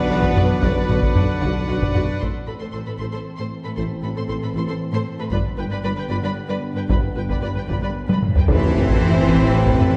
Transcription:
Already playing: trombone section F#3 D4, french horn section B3, pipe organ D4 B4 D5 F#5, violin section B4
0.09 tuba B1, double bass section B1, cello section E3, viola section F#4 D5, violin section F#5
0.23 taiko
0.35 tuba B1, double bass section B1, cello section F#3, viola section F#4 D5, violin section F#5, taiko low-mid
0.62 tuba B1, double bass section B1, cello section D3, french horn section B3, viola section F#4 D5, violin section B4 F#5, taiko
0.88 tuba B1, double bass section B1, viola section F#4 D5, violin section F#5, taiko low-mid
1.02 taiko
1.15 tuba B1, double bass section B1, viola section F#4 D5, violin section F#5, taiko low-mid
1.41 tuba B1, double bass section B1, viola section F#4 D5, violin section F#5, taiko
1.68 tuba B1, double bass section B1, viola section F#4 D5, violin section F#5
1.82 taiko
1.94 tuba B1, double bass section B1, viola section F#4 D5, violin section F#5, taiko low-mid
2.20 double bass section A1, tuba A1, cello section A2, trombone section E3 C4, french horn section C4 A4, viola section A4, violin section C5 C6, taiko
2.47 double bass section A1, tuba A1, cello section A2, viola section A4, violin section B4 B5
2.60 cello section A2, viola section A4, violin section C5 C6
2.72 double bass section A1, tuba A1, cello section A2, viola section A4, violin section C5 C6
2.86 cello section A2, viola section A4, violin section B4 B5
2.99 double bass section A1, tuba A1, cello section A2, viola section A4, violin section C5 C6
3.13 cello section A2, viola section A4, violin section C5 C6
3.37 cello section A2, viola section A4, violin section C5 C6
3.64 cello section A2, viola section A4, violin section B4 B5
3.77 double bass section A1, tuba A1, cello section A2, viola section A4, violin section C5 C6
4.02 double bass section A1, tuba A1, cello section A2, viola section A4, violin section B4 B5
4.16 cello section A2, viola section A4, violin section C5 C6
4.28 double bass section A1, tuba A1, cello section A2, viola section A4, violin section C5 C6
4.42 cello section A2, viola section A4, violin section B4 B5
4.54 double bass section A1, tuba A1, cello section A2, viola section A4, violin section C5 C6
4.68 cello section A2, viola section A4, violin section C5 C6
4.93 cello section A2, viola section A4, violin section C5 C6
5.19 cello section A2, viola section A4, violin section B4 B5
5.31 double bass section G1, tuba G1, cello section G2, trombone section D3 B3, french horn section D4 G4, viola section B4, violin section D5 B5, taiko
5.58 double bass section G1, tuba G1, cello section G2, viola section B4, violin section B4 G5
5.70 cello section G2, viola section B4, violin section D5 B5
5.83 double bass section G1, tuba G1, cello section G2, viola section B4, violin section D5 B5
5.97 cello section G2, violin section B4 G5, viola section B4
6.10 double bass section G1, tuba G1, cello section G2, viola section B4, violin section D5 B5
6.23 cello section G2, viola section B4, violin section D5 B5
6.49 cello section G2, viola section B4, violin section D5 B5
6.75 cello section G2, violin section B4 G5, viola section B4
6.88 double bass section G1, tuba G1, cello section G2, viola section B4, violin section D5 B5, taiko
7.15 double bass section G1, tuba G1, cello section G2, violin section B4 G5, viola section B4
7.28 cello section G2, viola section B4, violin section D5 B5, taiko
7.41 double bass section G1, tuba G1, cello section G2, viola section B4, violin section D5
7.46 violin section B5
7.55 cello section G2, viola section B4, violin section B4 G5
7.67 double bass section G1, tuba G1, cello section G2, viola section B4, violin section D5, taiko
7.73 violin section B5
7.81 cello section G2, viola section B4, violin section D5 B5
8.08 cello section G2, viola section B4, violin section D5, taiko high
8.13 violin section B5
8.22 taiko low-mid
8.35 cello section G2, viola section B4, violin section B4 G5, taiko low
8.47 double bass section A1, tuba A1, timpani A2, cello section E3, viola section E3, french horn section C4, pipe organ E4 A4 A5 B5, violin section B4 C5, taiko, tam-tam, sub drop
8.51 trombone section C4
8.75 violin section B4, taiko low-mid
8.88 taiko
9.01 violin section B4, taiko low-mid
9.27 double bass section A1, tuba A1, violin section B4, taiko
9.53 violin section B4
9.66 taiko
9.78 violin section B4, taiko low-mid

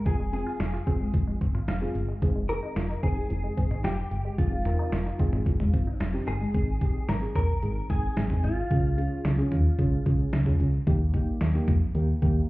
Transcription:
0.06 fm bass F1, synth arpeggio sound F3, synth keys C4 F4 G#4, clean electric guitar G#4, kick, closed hi-hat
0.20 synth arpeggio sound G#3
0.33 synth keys C4 F4 G#4, synth arpeggio sound C4, clean electric guitar G#4, closed hi-hat
0.46 synth arpeggio sound F4
0.60 fm bass F1, synth arpeggio sound F5, snare, closed hi-hat
0.73 synth arpeggio sound F4
0.87 fm bass F1, synth keys C4 F4 G#4, synth arpeggio sound C4, kick, closed hi-hat
1.00 synth arpeggio sound G#3
1.14 fm bass F1, synth arpeggio sound F3, kick, closed hi-hat
1.27 synth arpeggio sound G#3
1.41 fm bass G1, synth arpeggio sound C4, kick, closed hi-hat
1.55 synth arpeggio sound F4, mid tom
1.68 fm bass F1, synth arpeggio sound F5, snare, closed hi-hat
1.82 synth keys C4 F4 G#4
1.95 fm bass G1, closed hi-hat
2.08 synth arpeggio sound G#3
2.22 fm bass F1, synth arpeggio sound F3, synth keys C4 D#4 G#4, kick, closed hi-hat
2.36 synth arpeggio sound G#3
2.49 synth arpeggio sound C4, synth keys C4 D#4 G#4, clean electric guitar A#4, closed hi-hat
2.63 synth arpeggio sound D#4
2.76 fm bass F1, synth arpeggio sound F4, snare, closed hi-hat
2.90 synth arpeggio sound D#4
3.03 fm bass F1, synth arpeggio sound C4, synth keys C4 D#4 G#4, clean electric guitar G#4, kick, closed hi-hat
3.17 synth arpeggio sound G#3
3.30 fm bass F1, synth arpeggio sound F3, closed hi-hat
3.44 synth arpeggio sound G#3
3.57 fm bass G1, synth arpeggio sound C4, kick, closed hi-hat
3.71 synth arpeggio sound D#4, mid tom
3.84 fm bass F1, synth arpeggio sound F4, clean electric guitar G4, snare, closed hi-hat
4.11 fm bass G1, closed hi-hat
4.25 synth arpeggio sound G#3
4.38 fm bass F1, synth arpeggio sound F3, synth keys C4 D#4 G#4, clean electric guitar F4, kick, closed hi-hat
4.52 synth arpeggio sound G#3
4.65 synth arpeggio sound C4, synth keys C4 D#4 A#4, closed hi-hat, mid tom
4.79 synth arpeggio sound D#4
4.92 fm bass F1, synth arpeggio sound F4, snare, closed hi-hat
5.06 synth arpeggio sound D#4
5.19 fm bass F1, synth keys C4 D#4 G#4, synth arpeggio sound C4, kick, closed hi-hat
5.33 synth arpeggio sound G#3, mid tom
5.46 fm bass F1, synth arpeggio sound F3, kick, closed hi-hat
5.60 synth arpeggio sound G#3, mid tom
5.73 fm bass G1, synth arpeggio sound C4, kick, closed hi-hat
5.87 synth arpeggio sound D#4
6.00 fm bass F1, synth arpeggio sound F4, snare, closed hi-hat
6.14 synth keys C4 D#4 G4
6.27 fm bass G1, clean electric guitar G#4, closed hi-hat
6.41 synth arpeggio sound G#3
6.54 fm bass G#1, synth keys C4 D#4 G#4, kick, closed hi-hat
6.81 synth keys C4 D#4 G4, kick, closed hi-hat
7.09 fm bass G#1, clean electric guitar A#4, snare, closed hi-hat
7.22 synth keys C4 D#4 G#4
7.36 fm bass A#1, clean electric guitar A#4, kick, closed hi-hat, mid tom
7.63 fm bass G#1, synth keys C4 D#4 G#4, closed hi-hat
7.90 fm bass G#1, synth keys C4 D#4 G#4, clean electric guitar G#4, kick, closed hi-hat
8.17 fm bass G#1, snare, closed hi-hat
8.30 synth keys C4 D#4 G#4, mid tom
8.44 fm bass G#1, clean electric guitar F4, closed hi-hat
8.71 fm bass C#2, synth keys C#4 F4 G#4, kick, closed hi-hat
8.98 synth keys C#4 F4 G#4, closed hi-hat
9.25 fm bass C#2, snare, closed hi-hat
9.38 synth keys C#4 F4 G#4
9.52 fm bass D#2, closed hi-hat, mid tom
9.79 fm bass C#2, synth keys C#4 F4 G#4, kick, closed hi-hat
10.06 fm bass C#2, synth keys C#4 F4 G#4, kick, closed hi-hat
10.33 fm bass C#2, snare, closed hi-hat
10.46 synth keys C#4 F4 G#4, mid tom
10.60 fm bass C#2, closed hi-hat
10.87 fm bass D#2, synth keys A#3 D#4 G4, kick, closed hi-hat
11.14 synth keys A#3 D#4 G4, kick, closed hi-hat
11.41 fm bass D#2, snare, closed hi-hat
11.55 synth keys A#3 D#4 G4
11.68 fm bass F2, kick, closed hi-hat, mid tom
11.95 fm bass D#2, synth keys A#3 D#4 G4, closed hi-hat
12.22 fm bass D#2, synth keys A#3 D#4 G4, kick, closed hi-hat

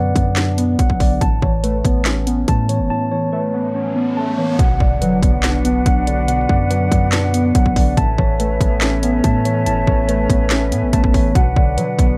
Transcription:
Already playing: 808-style bass F#2, synth keys B2 D3 F#3 B3 D4, tine electric piano B3 B4 D5 F#5
0.16 808-style bass F#2, synth keys B3, kick, closed hi-hat
0.36 synth keys D4, snare, clap, closed hi-hat
0.58 synth keys B3, tine electric piano B3, closed hi-hat
0.79 808-style bass B1, synth keys F#3, tine electric piano F#5, kick, closed hi-hat
0.90 kick
1.00 synth keys D3, tine electric piano D5, kick, open hi-hat
1.21 808-style bass A1, synth keys A2, tine electric piano A5, kick, closed hi-hat
1.42 808-style bass A1, synth keys E3, tine electric piano C#5, kick
1.64 synth keys A3, tine electric piano B4, closed hi-hat
1.85 808-style bass A1, synth keys B3, kick, closed hi-hat
2.05 synth keys C#4, snare, clap, closed hi-hat
2.27 synth keys B3, tine electric piano B3, closed hi-hat
2.48 808-style bass A2, synth keys A3, tine electric piano A5, kick, closed hi-hat
2.69 synth keys E3, tine electric piano C#5, closed hi-hat
2.80 808-style bass G1
2.90 synth keys A2, tine electric piano A5, riser
3.11 synth keys E3, tine electric piano C#5
3.32 synth keys A3, tine electric piano B4
3.54 synth keys B3
3.75 synth keys C#4
3.96 synth keys B3, tine electric piano B3
4.17 synth keys A3, tine electric piano A5
4.38 synth keys E3, tine electric piano C#5
4.59 808-style bass B1, synth keys B2, flute section D4 F#4 B4 F#5, tine electric piano F#5, kick, closed hi-hat, impact
4.80 808-style bass B1, synth keys D3, tine electric piano D5, kick
5.01 808-style bass F#3, synth keys F#3, tine electric piano B4, closed hi-hat
5.23 808-style bass B1, synth keys B3, kick, closed hi-hat
5.43 synth keys D4, snare, clap, closed hi-hat
5.65 synth keys B3, tine electric piano B3, closed hi-hat
5.86 808-style bass B1, synth keys F#3, tine electric piano F#5, kick, closed hi-hat
6.07 synth keys D3, tine electric piano D5, closed hi-hat
6.28 synth keys B2, tine electric piano F#5, closed hi-hat
6.49 808-style bass F#2, synth keys D3, tine electric piano D5, kick
6.71 synth keys F#3, tine electric piano B4, closed hi-hat
6.92 808-style bass F#2, synth keys B3, kick, closed hi-hat
7.12 synth keys D4, snare, clap, closed hi-hat
7.34 synth keys B3, tine electric piano B3, closed hi-hat
7.55 808-style bass B1, synth keys F#3, tine electric piano F#5, kick, closed hi-hat
7.66 kick
7.76 synth keys D3, tine electric piano D5, kick, open hi-hat
7.97 808-style bass A1, synth keys A2, flute section C#4 A4 B4 E5, tine electric piano A5, kick, closed hi-hat
8.18 808-style bass A1, synth keys E3, tine electric piano C#5, kick
8.40 synth keys A3, tine electric piano B4, closed hi-hat
8.61 808-style bass A1, synth keys B3, kick, closed hi-hat
8.81 synth keys C#4, snare, clap, closed hi-hat
9.03 tine electric piano B3, synth keys B3, closed hi-hat
9.24 808-style bass A2, synth keys A3, tine electric piano A5, kick, closed hi-hat
9.45 synth keys E3, tine electric piano C#5, closed hi-hat
9.66 808-style bass G1, synth keys A2, tine electric piano A5, closed hi-hat
9.87 808-style bass A1, synth keys E3, tine electric piano C#5, kick
10.09 synth keys A3, tine electric piano B4, closed hi-hat
10.30 808-style bass A1, synth keys B3, kick, closed hi-hat
10.50 synth keys C#4, snare, clap, closed hi-hat
10.72 808-style bass A2, synth keys B3, tine electric piano B3, closed hi-hat
10.83 808-style bass A1
10.93 808-style bass A1, synth keys A3, tine electric piano A5, kick, closed hi-hat
11.04 kick
11.14 synth keys E3, tine electric piano C#5, kick, open hi-hat
11.35 808-style bass B1, synth keys B2, flute section D4 F#4 F#5, tine electric piano F#5, kick, closed hi-hat
11.56 808-style bass B1, synth keys D3, tine electric piano D5, kick
11.78 synth keys F#3, 808-style bass F#3, tine electric piano B4, closed hi-hat
11.99 808-style bass B1, synth keys B3, kick, closed hi-hat

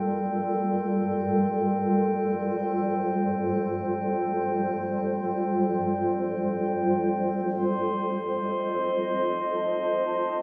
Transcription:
Already playing: ambient pad G3 F4 A4 A#4 G5, glass harmonica G5
1.82 ambient pad C5
7.47 ambient pad F4, glass harmonica C6
7.83 ambient pad D#5
8.99 ambient pad A5
9.23 ambient pad G5

